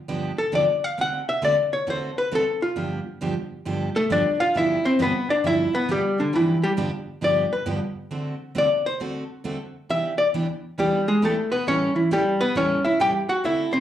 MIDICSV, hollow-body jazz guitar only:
0, 0, Header, 1, 2, 480
1, 0, Start_track
1, 0, Tempo, 445104
1, 1053, Time_signature, 4, 2, 24, 8
1, 14883, End_track
2, 0, Start_track
2, 0, Title_t, "Hollow-body jazz guitar"
2, 0, Program_c, 0, 26
2, 414, Note_on_c, 0, 69, 84
2, 569, Note_off_c, 0, 69, 0
2, 595, Note_on_c, 0, 74, 87
2, 908, Note_off_c, 0, 74, 0
2, 908, Note_on_c, 0, 77, 86
2, 1057, Note_off_c, 0, 77, 0
2, 1092, Note_on_c, 0, 78, 103
2, 1382, Note_off_c, 0, 78, 0
2, 1389, Note_on_c, 0, 76, 84
2, 1539, Note_off_c, 0, 76, 0
2, 1559, Note_on_c, 0, 74, 81
2, 1856, Note_off_c, 0, 74, 0
2, 1866, Note_on_c, 0, 73, 76
2, 2018, Note_off_c, 0, 73, 0
2, 2050, Note_on_c, 0, 72, 83
2, 2343, Note_off_c, 0, 72, 0
2, 2352, Note_on_c, 0, 71, 78
2, 2502, Note_off_c, 0, 71, 0
2, 2537, Note_on_c, 0, 69, 87
2, 2827, Note_off_c, 0, 69, 0
2, 2829, Note_on_c, 0, 65, 71
2, 3271, Note_off_c, 0, 65, 0
2, 4271, Note_on_c, 0, 69, 89
2, 4278, Note_on_c, 0, 57, 70
2, 4425, Note_off_c, 0, 69, 0
2, 4428, Note_off_c, 0, 57, 0
2, 4445, Note_on_c, 0, 74, 91
2, 4452, Note_on_c, 0, 62, 73
2, 4744, Note_off_c, 0, 74, 0
2, 4747, Note_on_c, 0, 77, 107
2, 4748, Note_off_c, 0, 62, 0
2, 4753, Note_on_c, 0, 65, 79
2, 4903, Note_off_c, 0, 77, 0
2, 4906, Note_off_c, 0, 65, 0
2, 4932, Note_on_c, 0, 76, 90
2, 4942, Note_on_c, 0, 64, 71
2, 5228, Note_off_c, 0, 76, 0
2, 5234, Note_off_c, 0, 64, 0
2, 5234, Note_on_c, 0, 72, 80
2, 5238, Note_on_c, 0, 60, 64
2, 5387, Note_off_c, 0, 72, 0
2, 5390, Note_off_c, 0, 60, 0
2, 5417, Note_on_c, 0, 71, 88
2, 5426, Note_on_c, 0, 59, 59
2, 5712, Note_off_c, 0, 71, 0
2, 5714, Note_off_c, 0, 59, 0
2, 5719, Note_on_c, 0, 74, 92
2, 5724, Note_on_c, 0, 62, 70
2, 5870, Note_off_c, 0, 74, 0
2, 5873, Note_off_c, 0, 62, 0
2, 5894, Note_on_c, 0, 76, 100
2, 5901, Note_on_c, 0, 64, 78
2, 6190, Note_off_c, 0, 76, 0
2, 6194, Note_off_c, 0, 64, 0
2, 6197, Note_on_c, 0, 71, 90
2, 6207, Note_on_c, 0, 59, 75
2, 6350, Note_off_c, 0, 71, 0
2, 6355, Note_off_c, 0, 59, 0
2, 6379, Note_on_c, 0, 67, 81
2, 6387, Note_on_c, 0, 55, 61
2, 6674, Note_off_c, 0, 67, 0
2, 6675, Note_off_c, 0, 55, 0
2, 6683, Note_on_c, 0, 62, 69
2, 6692, Note_on_c, 0, 50, 51
2, 6834, Note_off_c, 0, 62, 0
2, 6836, Note_off_c, 0, 50, 0
2, 6853, Note_on_c, 0, 64, 73
2, 6858, Note_on_c, 0, 52, 56
2, 7150, Note_off_c, 0, 64, 0
2, 7153, Note_off_c, 0, 52, 0
2, 7155, Note_on_c, 0, 67, 86
2, 7161, Note_on_c, 0, 55, 72
2, 7251, Note_off_c, 0, 67, 0
2, 7254, Note_off_c, 0, 55, 0
2, 7810, Note_on_c, 0, 74, 90
2, 8109, Note_off_c, 0, 74, 0
2, 8117, Note_on_c, 0, 71, 67
2, 8270, Note_off_c, 0, 71, 0
2, 9256, Note_on_c, 0, 74, 90
2, 9551, Note_off_c, 0, 74, 0
2, 9558, Note_on_c, 0, 72, 85
2, 9710, Note_off_c, 0, 72, 0
2, 10682, Note_on_c, 0, 76, 92
2, 10974, Note_off_c, 0, 76, 0
2, 10979, Note_on_c, 0, 74, 91
2, 11077, Note_off_c, 0, 74, 0
2, 11636, Note_on_c, 0, 55, 61
2, 11643, Note_on_c, 0, 67, 71
2, 11937, Note_off_c, 0, 55, 0
2, 11938, Note_off_c, 0, 67, 0
2, 11948, Note_on_c, 0, 56, 61
2, 11951, Note_on_c, 0, 68, 69
2, 12101, Note_off_c, 0, 56, 0
2, 12101, Note_off_c, 0, 68, 0
2, 12129, Note_on_c, 0, 57, 68
2, 12134, Note_on_c, 0, 69, 70
2, 12419, Note_on_c, 0, 71, 84
2, 12422, Note_off_c, 0, 69, 0
2, 12423, Note_off_c, 0, 57, 0
2, 12427, Note_on_c, 0, 59, 67
2, 12575, Note_off_c, 0, 71, 0
2, 12579, Note_off_c, 0, 59, 0
2, 12596, Note_on_c, 0, 73, 93
2, 12601, Note_on_c, 0, 61, 70
2, 12893, Note_off_c, 0, 61, 0
2, 12894, Note_off_c, 0, 73, 0
2, 12894, Note_on_c, 0, 52, 36
2, 12897, Note_on_c, 0, 64, 42
2, 13050, Note_off_c, 0, 64, 0
2, 13051, Note_off_c, 0, 52, 0
2, 13079, Note_on_c, 0, 67, 84
2, 13084, Note_on_c, 0, 55, 64
2, 13374, Note_off_c, 0, 67, 0
2, 13377, Note_off_c, 0, 55, 0
2, 13379, Note_on_c, 0, 71, 87
2, 13384, Note_on_c, 0, 59, 71
2, 13532, Note_off_c, 0, 71, 0
2, 13535, Note_off_c, 0, 59, 0
2, 13556, Note_on_c, 0, 73, 85
2, 13562, Note_on_c, 0, 61, 69
2, 13851, Note_off_c, 0, 73, 0
2, 13852, Note_on_c, 0, 76, 79
2, 13854, Note_off_c, 0, 61, 0
2, 13860, Note_on_c, 0, 64, 62
2, 14008, Note_off_c, 0, 76, 0
2, 14009, Note_off_c, 0, 64, 0
2, 14031, Note_on_c, 0, 79, 108
2, 14038, Note_on_c, 0, 67, 84
2, 14327, Note_off_c, 0, 79, 0
2, 14328, Note_off_c, 0, 67, 0
2, 14333, Note_on_c, 0, 66, 78
2, 14336, Note_on_c, 0, 78, 87
2, 14486, Note_off_c, 0, 78, 0
2, 14487, Note_off_c, 0, 66, 0
2, 14508, Note_on_c, 0, 76, 85
2, 14514, Note_on_c, 0, 64, 73
2, 14804, Note_off_c, 0, 76, 0
2, 14804, Note_on_c, 0, 72, 85
2, 14807, Note_off_c, 0, 64, 0
2, 14811, Note_on_c, 0, 60, 67
2, 14883, Note_off_c, 0, 60, 0
2, 14883, Note_off_c, 0, 72, 0
2, 14883, End_track
0, 0, End_of_file